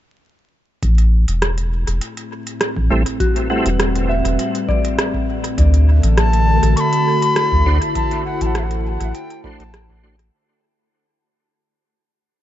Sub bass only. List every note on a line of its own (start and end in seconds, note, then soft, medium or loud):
0.83 1.25 A1 medium
1.28 1.84 E1 loud
1.87 2.00 E1 loud
2.77 2.89 A1 medium
2.90 3.04 A1 loud
3.66 4.22 E1 loud
4.25 4.37 E1 loud
5.58 6.00 D2 loud
6.03 6.60 A1 loud
6.63 6.75 A1 loud
7.52 7.64 D2 medium
7.66 7.79 D2 loud
8.41 8.97 A1 loud
9.00 9.12 A1 loud
9.59 10.30 A1 medium